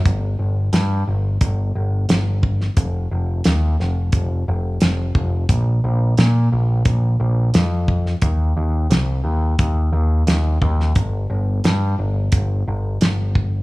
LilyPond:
<<
  \new Staff \with { instrumentName = "Picked electric bass" } { \clef bass \time 4/4 \key bes \major \tempo 4 = 88 g,,8 g,,8 g,8 g,,8 g,,8 g,,8 g,,4 | f,,8 f,,8 ees,8 f,,8 f,,8 f,,8 f,,8 f,,8 | bes,,8 bes,,8 bes,8 bes,,8 bes,,8 bes,,8 f,4 | ees,8 ees,8 c,8 ees,8 ees,8 ees,8 ees,8 ees,8 |
g,,8 g,,8 g,8 g,,8 g,,8 g,,8 g,,4 | }
  \new DrumStaff \with { instrumentName = "Drums" } \drummode { \time 4/4 <hh bd>4 <hh sn>4 <hh bd>4 <hh sn>8 bd16 sn16 | <hh bd>4 <hh sn>8 sn8 <hh bd>4 <hh sn>8 bd8 | <hh bd>4 <hh sn>4 <hh bd>4 <hh sn>8 bd16 sn16 | <hh bd>4 <hh sn>4 <hh bd>4 <hh sn>8 bd16 sn16 |
<hh bd>4 <hh sn>4 <hh bd>4 <hh sn>8 bd8 | }
>>